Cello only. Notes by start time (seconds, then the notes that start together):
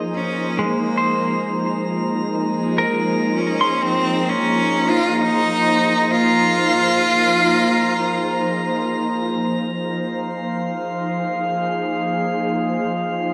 0.14 C#4
0.63 A#3
2.45 G#3
3.36 C#4
3.83 C4
4.29 C#4
4.90 F4
5.12 F4
5.21 D#4
6.11 F4